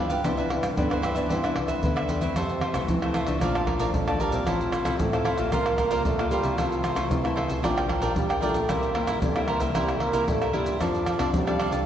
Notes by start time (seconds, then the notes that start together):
Already playing: D3 F3 B3
0.00 E4
0.10 G2 G4 B4 F5, pandeiro, shaker, surdo
0.24 C2 C3 E3 B3 D4 G4 B4 C5 E5, pandeiro, tamborim, shaker, surdo
0.37 E3 B3 D4 B4 C5 E5, pandeiro, shaker
0.50 muted cavaquinho stroke, pandeiro, tamborim
0.63 G2, pandeiro, tamborim, shaker, surdo
0.76 G2 D3 E3 B3 D4 G4 B4 C5 E5, pandeiro, shaker, surdo
0.90 B4 C5 E5, pandeiro, tamborim, shaker
1.02 E3 G4 B4 C5 E5, pandeiro, tamborim, shaker, surdo
1.15 E3 B3 D4 B4 C5 E5, pandeiro, shaker
1.29 G2 C3 E3 G4 B4 C5 E5, pandeiro, shaker, surdo
1.43 E3 B3 D4 B4 C5 E5, pandeiro, tamborim, shaker
1.56 C2, muted cavaquinho stroke, pandeiro, tamborim
1.68 B4 C5 E5, pandeiro, shaker, surdo
1.83 D2 G2 D3 E3 B3 D4, pandeiro, shaker, surdo
1.96 B4 C5 E5, pandeiro, tamborim, shaker
2.08 E2 G4 B4 C5 E5, pandeiro, shaker, surdo
2.21 E3 A3 C4 B4 C5 E5, pandeiro, shaker, surdo
2.35 F2 C3 F4 A4 C5 E5, pandeiro, tamborim, shaker, surdo
2.49 pandeiro, shaker
2.61 F4 A4 C5 E5, pandeiro, tamborim
2.74 C2 E3 A3 C4 F4 A4 C5 E5, pandeiro, tamborim, shaker
2.88 C3 E3 F3, pandeiro, shaker, surdo
3.02 E3 A3 C4 A4 C5 E5, pandeiro, tamborim, shaker
3.14 F4 A4 C5 E5, pandeiro, tamborim, shaker
3.26 C2 F3 A3 D4 A4 C5 E5, pandeiro, shaker
3.41 A#1 A#2 F3 A#4 D5 F5 A5, pandeiro, tamborim, shaker, surdo
3.55 D5 F5 A5, pandeiro, tamborim, shaker
3.67 A#4 D5 F5 A5, pandeiro, tamborim, surdo
3.79 A#1 F3 A3 D4 A#4 D5 F5 A5, pandeiro, shaker
3.94 A#1 F2 D3, pandeiro, shaker, surdo
4.08 F3 A3 D4 D5 F5 A5, pandeiro, tamborim, shaker
4.19 G3 A#4 D5 F5 A5, pandeiro, shaker
4.32 A#2 F3 C4 E4, pandeiro, shaker
4.47 A1 A2 F3 E4 A4 C5 F5, pandeiro, tamborim, shaker, surdo
4.61 pandeiro, shaker
4.72 E4 A4 C5 F5, pandeiro, tamborim, shaker
4.85 C2 F3 C4 E4 A4 C5 F5, pandeiro, tamborim, shaker
4.99 A2 A3, pandeiro, shaker, surdo
5.13 F3 C4 E4 A4 C5 F5, pandeiro, tamborim, shaker
5.24 E4 A4 C5 F5, pandeiro, tamborim
5.38 A#1 G3 A#3 F4 A4 C5 F5, pandeiro, shaker
5.52 C2 C3 A#3 F4 A#4 C5 F5, pandeiro, tamborim, shaker, surdo
5.66 A#4 C5 F5, pandeiro, tamborim, shaker
5.78 F4 A#4 C5 F5, pandeiro, tamborim, shaker, surdo
5.91 C2 G3 A#3 F4 A#4 C5 F5, pandeiro, shaker
6.05 C2 G2 A3, pandeiro, shaker, surdo
6.19 G3 A#3 F4 A#4 C5 F5, pandeiro, tamborim, shaker
6.31 G3 F4 A#4 C5 F5, pandeiro, shaker
6.43 C3 F3 A3 E4, pandeiro, shaker
6.58 C2 C3 F3 F4 A4 C5 E5, pandeiro, tamborim, shaker, surdo
6.72 pandeiro, shaker
6.83 F4 A4 C5 E5, pandeiro, tamborim, shaker
6.95 C2 F3 A3 E4 F4 A4 C5 E5, pandeiro, tamborim, shaker
7.10 C3 E3, pandeiro, shaker, surdo
7.24 A3 E4 A4 C5 E5, pandeiro, tamborim, shaker
7.36 F4 A4 C5 E5, pandeiro, tamborim
7.48 C2 A4 C5 E5, pandeiro, shaker
7.63 A#1 A#2 F3 G3 D4 F4 A#4 D5 G5, pandeiro, tamborim, shaker, surdo
7.76 A#4 D5 G5, pandeiro, tamborim, shaker
7.88 D4 A#4 D5 G5, pandeiro, tamborim, surdo
8.01 A#1 G3 D4 F4 A#4 D5 G5, pandeiro, shaker
8.16 A#1 F3 G3, pandeiro, shaker, surdo
8.29 A#4 D5 G5, pandeiro, tamborim, shaker
8.41 G3 A3 D4 F4 A#4 D5 G5, pandeiro, shaker
8.54 A#2, pandeiro, shaker
8.68 C2 C3 G3 A#3 E4 A#4 C5 E5, pandeiro, tamborim, shaker, surdo
8.83 pandeiro, shaker
8.94 G3 A#3 E4 A#4 C5 E5, pandeiro, tamborim
9.07 G2 E4 A#4 C5 E5, pandeiro, tamborim, shaker
9.22 G2 C3 A3, pandeiro, shaker, surdo
9.36 G3 A#3 E4 A#4 C5 E5, pandeiro, tamborim, shaker
9.48 E4 A#4 C5 E5, pandeiro, tamborim
9.60 C2 G3 A#3 E4 A#4 C5 E5, pandeiro, shaker
9.74 C2 C3 G3 A#3 E4 A#4 C5 E5, pandeiro, tamborim, shaker, surdo
9.88 A#4 C5 E5, pandeiro, tamborim, shaker
10.00 A#3 E4 A#4 C5 E5, pandeiro, tamborim
10.13 C2 G3 A#3 E4 A#4 C5 E5, pandeiro, shaker
10.28 G2 A2 A3, pandeiro, shaker, surdo
10.41 A#4 C5 E5, pandeiro, tamborim, shaker
10.53 G2 G3 A#3 E4 A#4 C5 E5, pandeiro
10.66 pandeiro, shaker
10.80 F2 F3 C4 D4 A4 D5 F5, pandeiro, tamborim, shaker, surdo
10.95 pandeiro, shaker
11.06 D4 A4 D5 F5, pandeiro, tamborim, shaker
11.19 C2 C4 D4 A4 D5 F5, pandeiro, tamborim, shaker
11.33 C3 F3 G3, pandeiro, shaker, surdo
11.47 C4 D4 A4 D5 F5, pandeiro, tamborim, shaker
11.59 D4 A4 D5 F5, pandeiro, tamborim
11.72 C2 D4 F4 A4 D5 F5, pandeiro, shaker